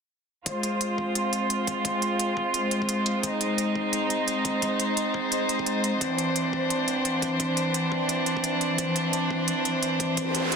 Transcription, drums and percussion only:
0.46 kick loud
0.46 closed hi-hat medium
0.63 closed hi-hat medium
0.81 closed hi-hat medium
0.98 kick medium
1.15 closed hi-hat medium
1.33 closed hi-hat medium
1.50 closed hi-hat medium
1.67 kick medium
1.67 closed hi-hat medium
1.85 kick loud
1.85 closed hi-hat medium
2.02 closed hi-hat medium
2.19 closed hi-hat medium
2.37 kick medium
2.54 closed hi-hat medium
2.71 closed hi-hat medium
2.82 kick medium
2.89 closed hi-hat medium
3.06 closed hi-hat medium
3.23 kick loud
3.23 closed hi-hat medium
3.41 closed hi-hat medium
3.58 closed hi-hat medium
3.76 kick medium
3.93 closed hi-hat medium
4.10 closed hi-hat medium
4.28 closed hi-hat medium
4.45 kick loud
4.45 closed hi-hat medium
4.62 kick loud
4.62 closed hi-hat medium
4.80 closed hi-hat medium
4.97 closed hi-hat medium
5.14 kick medium
5.32 closed hi-hat medium
5.49 closed hi-hat medium
5.59 kick medium
5.66 closed hi-hat medium
5.84 closed hi-hat medium
6.01 kick loud
6.01 closed hi-hat medium
6.18 closed hi-hat medium
6.36 closed hi-hat medium
6.53 kick medium
6.70 closed hi-hat medium
6.88 closed hi-hat medium
7.05 closed hi-hat medium
7.22 kick medium
7.22 closed hi-hat medium
7.40 kick loud
7.40 closed hi-hat medium
7.57 closed hi-hat medium
7.74 closed hi-hat medium
7.92 kick medium
8.09 closed hi-hat medium
8.26 closed hi-hat medium
8.37 kick medium
8.44 closed hi-hat medium
8.61 closed hi-hat medium
8.78 kick loud
8.78 closed hi-hat medium
8.96 closed hi-hat medium
9.13 closed hi-hat medium
9.31 kick medium
9.48 closed hi-hat medium
9.65 closed hi-hat medium
9.83 closed hi-hat medium
10.00 kick medium
10.00 closed hi-hat medium
10.17 kick loud
10.17 closed hi-hat medium
10.35 closed hi-hat medium
10.52 closed hi-hat medium

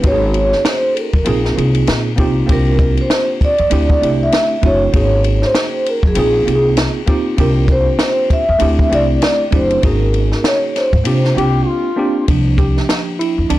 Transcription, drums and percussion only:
0.03 kick medium
0.03 ride medium
0.34 ride soft
0.52 snare soft
0.65 snare loud
0.65 hi-hat pedal medium
0.65 ride medium
0.97 ride medium
1.13 kick medium
1.13 ride soft
1.25 ride medium
1.45 snare soft
1.58 ride medium
1.75 ride medium
1.87 snare loud
1.87 hi-hat pedal soft
1.87 ride medium
2.18 kick medium
2.18 ride medium
2.49 kick loud
2.49 ride medium
2.79 kick medium
2.79 ride soft
2.97 ride soft
3.10 snare loud
3.10 hi-hat pedal medium
3.10 ride medium
3.41 kick medium
3.41 ride medium
3.58 ride soft
3.71 ride medium
3.90 kick medium
4.03 ride medium
4.32 snare loud
4.32 hi-hat pedal soft
4.32 ride medium
4.63 kick medium
4.63 ride medium
4.93 kick loud
4.93 ride medium
5.24 ride medium
5.42 snare soft
5.55 snare loud
5.55 hi-hat pedal medium
5.55 ride medium
5.86 ride medium
6.03 kick medium
6.15 ride medium
6.48 ride medium
6.77 snare loud
6.77 hi-hat pedal soft
6.77 ride medium
7.07 kick medium
7.07 ride medium
7.38 kick loud
7.38 ride medium
7.68 kick medium
7.68 ride medium
7.99 snare loud
7.99 hi-hat pedal medium
7.99 ride medium
8.30 kick medium
8.30 ride medium
8.60 ride medium
8.79 kick medium
8.92 ride medium
9.22 snare loud
9.22 hi-hat pedal soft
9.22 ride medium
9.52 kick medium
9.52 ride medium
9.71 ride soft
9.83 kick loud
9.83 ride medium
10.14 ride soft
10.32 snare soft
10.44 snare loud
10.44 hi-hat pedal medium
10.44 ride medium
10.76 snare soft
10.76 ride medium
10.93 kick loud
10.93 ride soft
11.05 ride medium
11.25 snare soft
11.38 ride medium
12.28 kick medium
12.28 ride medium
12.58 kick medium
12.58 ride soft
12.77 snare soft
12.89 snare medium
12.89 hi-hat pedal medium
12.89 ride medium
13.21 ride medium
13.50 ride medium

